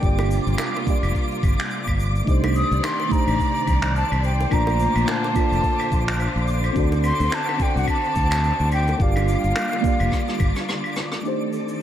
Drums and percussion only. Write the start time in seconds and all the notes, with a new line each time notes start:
0.03 kick, shaker
0.19 high bongo, claves, shaker
0.31 shaker
0.47 shaker
0.58 finger snap, high bongo, claves, shaker
0.75 high bongo, shaker
0.87 kick, shaker
1.03 claves, shaker
1.15 kick, shaker
1.31 shaker
1.43 kick, claves, shaker
1.59 finger snap, shaker
1.71 shaker
1.87 kick, claves, shaker
1.99 shaker
2.16 shaker
2.27 kick, shaker
2.44 high bongo, claves, shaker
2.55 shaker
2.72 shaker
2.84 finger snap, high bongo, claves, shaker
3.00 high bongo, shaker
3.12 kick, shaker
3.27 claves, shaker
3.40 kick, shaker
3.56 shaker
3.67 kick, claves, shaker
3.82 finger snap, shaker
3.96 shaker
4.12 claves, shaker
4.24 shaker
4.40 high bongo, shaker
4.51 kick, claves, shaker
4.67 high bongo, shaker
4.80 shaker
4.96 claves, shaker
5.07 finger snap, high bongo, shaker
5.24 high bongo, shaker
5.35 kick, claves, shaker
5.53 shaker
5.64 kick, shaker
5.80 claves, shaker
5.92 kick, shaker
6.08 finger snap, shaker
6.19 claves, shaker
6.37 shaker
6.47 shaker
6.64 claves, shaker
6.76 kick, shaker
6.92 high bongo, shaker
7.04 claves, shaker
7.20 shaker
7.32 finger snap, high bongo, shaker
7.49 high bongo, claves, shaker
7.59 kick, shaker
7.77 shaker
7.88 kick, claves, shaker
8.04 shaker
8.15 kick, shaker
8.31 finger snap, claves, shaker
8.44 shaker
8.59 shaker
8.71 claves, shaker
8.87 high bongo, shaker
9.00 kick, shaker
9.16 high bongo, claves, shaker
9.28 shaker
9.44 shaker
9.56 finger snap, high bongo, claves, shaker
9.71 high bongo, shaker
9.84 kick, shaker
10.00 claves, shaker
10.12 kick, cross-stick, shaker
10.27 cross-stick, shaker
10.40 kick, claves, shaker
10.56 cross-stick, shaker
10.68 cross-stick, shaker
10.84 claves, shaker
10.96 cross-stick, shaker
11.12 cross-stick, shaker
11.25 shaker
11.53 shaker
11.68 shaker